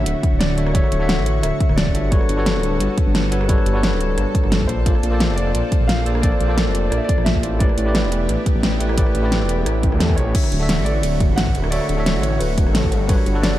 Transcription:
Already playing: D3 A3 D4 E4 F#4 C#5 E5 C#6
0.06 D1, closed hi-hat
0.23 kick, closed hi-hat
0.32 D1
0.39 D5, snare, closed hi-hat
0.57 D1 D3 D4 F#4 C#5 E5, closed hi-hat
0.67 cross-stick
0.73 D3 D4 F#4 C#5 E5, kick, closed hi-hat
0.84 cross-stick
0.92 D1, closed hi-hat
0.99 D3 D4 F#4 C#5 E5
1.08 F#5, snare, closed hi-hat
1.18 A1
1.26 closed hi-hat
1.42 D1 E5, cross-stick, closed hi-hat
1.60 kick, closed hi-hat
1.69 D1, cross-stick
1.76 D5, snare, closed hi-hat
1.86 kick
1.94 G1 D3 D4 F#4 C#5 E5, closed hi-hat
2.10 G3 B3 D4 F#4 A4 B4 C#5, kick, closed hi-hat
2.21 cross-stick
2.29 G1, closed hi-hat
2.36 G3 D4 F#4 A4 B4 C#5
2.46 snare, closed hi-hat
2.55 D1
2.63 closed hi-hat
2.80 G1, closed hi-hat
2.98 kick, closed hi-hat
3.06 G1
3.15 snare, closed hi-hat
3.31 G1 G3 D4 F#4 A4 B4 C#5, closed hi-hat
3.41 cross-stick
3.48 G3 D4 F#4 A4 B4 C#5, kick, closed hi-hat
3.58 cross-stick
3.66 G1, closed hi-hat
3.73 G3 D4 F#4 A4 B4 C#5
3.83 snare, closed hi-hat
3.92 D1
4.01 closed hi-hat
4.18 G1, cross-stick, closed hi-hat
4.35 kick, closed hi-hat
4.44 G1, cross-stick
4.50 A4, snare, closed hi-hat
4.61 kick
4.67 A#1 A#3 C4 D4 F4 A4 C5 D5, closed hi-hat
4.85 A#3 F4 A4 C5 D5, kick, closed hi-hat
4.95 cross-stick
5.03 A#1, closed hi-hat
5.10 A#3 F4 A4 C5 D5
5.20 snare, closed hi-hat
5.29 F1
5.36 D5, closed hi-hat
5.55 A#1, closed hi-hat
5.72 kick, closed hi-hat
5.81 A#1
5.87 F5, snare, closed hi-hat
6.05 A#1 A#3 F4 A4 C5 D5, closed hi-hat
6.15 cross-stick
6.22 A#3 F4 A4 C5 D5, kick, closed hi-hat
6.32 cross-stick
6.40 A#1, closed hi-hat
6.47 A#3 F4 A4 C5 D5
6.58 snare, closed hi-hat
6.67 F1
6.75 closed hi-hat
6.90 A#1 D5, cross-stick, closed hi-hat
6.97 E5
7.04 D5
7.09 kick, closed hi-hat
7.18 A#1, cross-stick
7.25 E5, snare, closed hi-hat
7.35 kick
7.42 A1 A#3 F4 A4 C5 D5, closed hi-hat
7.59 A3 B3 E4 G4 B4 D5, kick, closed hi-hat
7.69 cross-stick
7.78 A1, closed hi-hat
7.85 A3 E4 G4 B4 D5
7.95 snare, closed hi-hat
8.04 E1
8.12 closed hi-hat
8.29 A1, closed hi-hat
8.46 kick, closed hi-hat
8.55 A1
8.63 snare, closed hi-hat
8.80 A1 A3 E4 G4 B4 D5, closed hi-hat
8.89 cross-stick
8.97 A3 E4 G4 B4 D5, kick, closed hi-hat
9.06 cross-stick
9.15 A1, closed hi-hat
9.22 A3 E4 G4 B4 D5
9.32 snare, closed hi-hat
9.41 E1
9.49 closed hi-hat
9.66 A1, cross-stick, closed hi-hat
9.83 kick, closed hi-hat
9.92 E2, cross-stick
9.99 A4, snare, closed hi-hat
10.09 kick, cross-stick
10.16 A1 C#5, closed hi-hat
10.34 D3 A3 D4 E4 F#4 C#5 E5 C#6, kick, closed hi-hat, crash, ride
10.44 cross-stick
10.52 D1, closed hi-hat, ride
10.59 D3 D4 F#4 D5 E5
10.69 snare, closed hi-hat, ride
10.78 A1
10.85 D5, closed hi-hat, ride
11.03 D1, closed hi-hat, ride
11.20 kick, closed hi-hat, ride
11.29 A1
11.36 F#5, snare, closed hi-hat, ride
11.47 kick
11.55 D1, closed hi-hat, ride
11.64 cross-stick
11.70 D3 D4 F#4 C#5 D5 E5, closed hi-hat, ride
11.81 cross-stick
11.89 D1, closed hi-hat, ride
11.96 D3 D4 F#4 C#5 E5
12.06 snare, closed hi-hat, ride
12.15 A1
12.22 C#5, closed hi-hat, ride
12.39 D1 B4, closed hi-hat, ride
12.58 kick, closed hi-hat, ride
12.67 A1, cross-stick
12.73 A4, snare, closed hi-hat, ride
12.84 kick
12.92 G1, closed hi-hat, ride
13.08 G3 B3 D4 F#4 A4 B4 C#5 A5, kick, closed hi-hat, ride
13.18 cross-stick
13.26 G1, closed hi-hat, ride
13.33 G3 D4 F#4 A4 B4
13.42 D5, snare, closed hi-hat, ride
13.52 D1

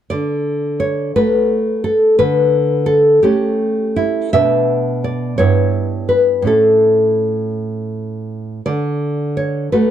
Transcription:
0.10 D3 D5
0.80 C#5
1.16 A3 F#4 B4
1.84 A4
2.19 D3 B4
2.86 A4
3.23 A3 C#4 G4
3.96 E4
4.33 B2 B3 D4 E5
5.04 D5
5.38 G2 B3 E4 C#5
6.09 B4
6.42 A2 C#4 E4
6.47 A4
8.66 D3 D5
9.37 C#5
9.72 A3 F#4 B4

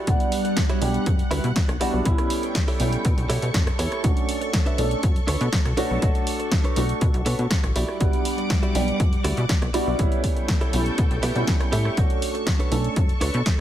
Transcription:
Already playing: G3 E4 F#4 G4 D5 F#5
0.07 B1 G3 B3 D4 F#5, kick, closed hi-hat
0.20 closed hi-hat
0.32 open hi-hat
0.45 muted clean electric guitar stroke, closed hi-hat
0.57 muted clean electric guitar stroke, kick, snare, closed hi-hat
0.69 E4 F#4 G4 C#5, closed hi-hat
0.81 B1 G3 B3 D4 G4, open hi-hat
0.94 closed hi-hat
1.06 F#2, muted clean electric guitar stroke, kick, closed hi-hat
1.19 closed hi-hat
1.31 D2 E4 F#4 G4 B4, cross-stick, open hi-hat
1.44 B2, closed hi-hat
1.56 kick, snare, closed hi-hat
1.68 B1, muted clean electric guitar stroke, cross-stick, closed hi-hat
1.80 B1 G3 B3 D4 E4 F#4 G4 D5, open hi-hat
1.93 B1
2.05 B1 G3 B3 C#4 E4 A4 G5 C#6, kick, closed hi-hat
2.18 cross-stick, closed hi-hat
2.30 open hi-hat
2.43 muted clean electric guitar stroke, closed hi-hat
2.55 muted clean electric guitar stroke, kick, snare, closed hi-hat
2.68 E4 G4 A4 C#5, open hi-hat
2.79 B1 G3 B3 C#4 E4, open hi-hat
2.93 closed hi-hat
3.05 B2, muted clean electric guitar stroke, kick, closed hi-hat
3.18 B1, closed hi-hat
3.29 B2 E4 G4 A4 C#5, snare, open hi-hat
3.42 B2, closed hi-hat
3.54 F#2, kick, snare, closed hi-hat
3.67 muted clean electric guitar stroke, cross-stick, closed hi-hat
3.79 E2 E4 G4 A4 C#5, open hi-hat
3.92 cross-stick, closed hi-hat
4.03 B1 A3 C#4 D4 F#4, kick, closed hi-hat
4.17 closed hi-hat
4.29 open hi-hat
4.41 muted clean electric guitar stroke, closed hi-hat
4.53 muted clean electric guitar stroke, kick, snare, closed hi-hat
4.66 D4 A4 B4 E5, closed hi-hat
4.78 B1 A3 C#4 D4 A4, open hi-hat
4.91 closed hi-hat
5.03 F#2, muted clean electric guitar stroke, kick, closed hi-hat
5.16 closed hi-hat
5.27 D2 D4 A4 B4 C#5, cross-stick, open hi-hat
5.41 B2, closed hi-hat
5.53 kick, snare, closed hi-hat
5.65 B1, muted clean electric guitar stroke, cross-stick, closed hi-hat
5.77 B1 A3 C#4 D4 F#4 A4 B4 C#5, open hi-hat
5.91 B1
6.02 B1 A3 D4 F#4 C#5, kick, closed hi-hat
6.15 closed hi-hat
6.27 open hi-hat
6.39 muted clean electric guitar stroke, closed hi-hat
6.51 muted clean electric guitar stroke, kick, snare, closed hi-hat
6.64 D4 A4 B4 C#5, closed hi-hat
6.76 B1 A3 D4 F#4, open hi-hat
6.89 closed hi-hat
7.01 B2, muted clean electric guitar stroke, kick, closed hi-hat
7.14 B1, closed hi-hat
7.26 B2 D4 A4 B4 C#5, open hi-hat
7.39 B2, closed hi-hat
7.51 kick, snare, closed hi-hat
7.63 A1, muted clean electric guitar stroke, cross-stick, closed hi-hat
7.76 B1 G3 E4 F#4 G4 D5 F#5 D6, open hi-hat
7.88 cross-stick
8.00 B1 G3 B3 D4 F#5, kick, closed hi-hat
8.13 closed hi-hat
8.25 open hi-hat
8.38 muted clean electric guitar stroke, closed hi-hat
8.50 muted clean electric guitar stroke, kick, snare, closed hi-hat
8.63 E4 F#4 G4 D5, closed hi-hat
8.75 B1 G3 B3 D4 G4, open hi-hat
8.88 closed hi-hat
9.00 F#2, muted clean electric guitar stroke, kick, closed hi-hat
9.13 closed hi-hat
9.24 D2 E4 F#4 G4 D5, cross-stick, open hi-hat
9.37 B2, closed hi-hat
9.49 kick, snare, closed hi-hat
9.62 B1, muted clean electric guitar stroke, cross-stick, closed hi-hat
9.74 B1 G3 B3 D4 E4 F#4 G4 D5, open hi-hat
9.87 B1
9.98 B1 G3 B3 C#4 E4 A4 G5 C#6, kick, closed hi-hat
10.12 closed hi-hat
10.24 kick, open hi-hat
10.36 muted clean electric guitar stroke, closed hi-hat
10.48 muted clean electric guitar stroke, kick, snare, closed hi-hat
10.61 E4 G4 A4 C#5, closed hi-hat
10.73 B1 G3 B3 C#4 E4, open hi-hat
10.86 closed hi-hat
10.98 B2, muted clean electric guitar stroke, kick, closed hi-hat
11.11 B1, closed hi-hat
11.23 B2 E4 G4 A4 B4, snare, open hi-hat
11.35 B2 G3 B3 C#4 E4, closed hi-hat
11.47 kick, snare, closed hi-hat
11.60 muted clean electric guitar stroke, cross-stick, closed hi-hat
11.72 A2 E4 G4 A4 E5, open hi-hat
11.85 cross-stick
11.97 B1 A3 C#4 D4 F#4 A4, kick, closed hi-hat
12.10 closed hi-hat
12.22 open hi-hat
12.34 muted clean electric guitar stroke, closed hi-hat
12.47 muted clean electric guitar stroke, kick, snare, closed hi-hat
12.59 D4 A4 B4 C#5, closed hi-hat
12.71 B1 A3 C#4 D4 A4, open hi-hat
12.84 closed hi-hat
12.96 F#2, muted clean electric guitar stroke, kick, closed hi-hat
13.09 closed hi-hat
13.21 D2 D4 A4 B4 C#5, cross-stick, open hi-hat
13.34 B2, closed hi-hat
13.46 kick, snare, closed hi-hat

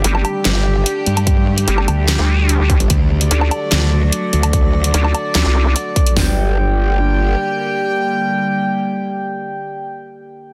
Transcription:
Already playing: D3 G3 A3 D4 G4
0.04 G1, closed hi-hat
0.15 low woodblock
0.25 closed hi-hat, low woodblock
0.45 G1, snare, clap, closed hi-hat
0.76 G3 D4 G4
0.86 closed hi-hat
1.06 G2, closed hi-hat
1.17 closed hi-hat, low woodblock
1.27 kick, closed hi-hat
1.58 G3 D4 G4, closed hi-hat
1.68 G1, closed hi-hat
1.78 low woodblock
1.88 D2, closed hi-hat, low woodblock
2.08 snare, clap, closed hi-hat
2.19 D2
2.39 G3 D4 G4
2.49 closed hi-hat
2.60 D2
2.70 kick, closed hi-hat
2.80 G1, closed hi-hat
2.90 D2 F#3 F#4, kick, closed hi-hat
3.21 D4 A4 D5, closed hi-hat
3.31 D2, closed hi-hat
3.41 low woodblock
3.51 closed hi-hat, low woodblock
3.72 D2, snare, clap, closed hi-hat
4.02 D4 A4 D5
4.12 closed hi-hat
4.33 D2, closed hi-hat
4.43 closed hi-hat, low woodblock
4.53 kick, closed hi-hat
4.84 D4 A4 D5, closed hi-hat
4.94 D2, closed hi-hat
5.04 low woodblock
5.15 closed hi-hat, low woodblock
5.35 D2, snare, clap, closed hi-hat
5.45 C2
5.66 D4 A4 D5
5.76 closed hi-hat
5.96 kick, closed hi-hat
6.07 closed hi-hat
6.17 G1 D3 G3 A#3 G4 D5 G5, snare, floor tom, open hi-hat

